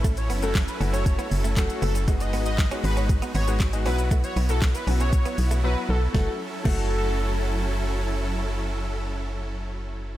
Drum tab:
CC |----------------|----------------|----------------|----x-----------|
HH |xxoxxxoxxxoxxxox|xxoxxxoxxxoxxxox|xxoxxxoxxxox----|----------------|
SH |xxxxxxxxxxxxxxxx|xxxxxxxxxxxxxxxx|xxxxxxxxxxxx----|----------------|
CP |----x-------x---|----x-------x---|----x-----------|----------------|
SD |----o-------o---|----o-------o---|----o-----------|o---------------|
BD |o---o---o---o---|o---o---o---o---|o---o---o-------|o---o-----------|

CC |----------------|
HH |----------------|
SH |----------------|
CP |----------------|
SD |----------------|
BD |----------------|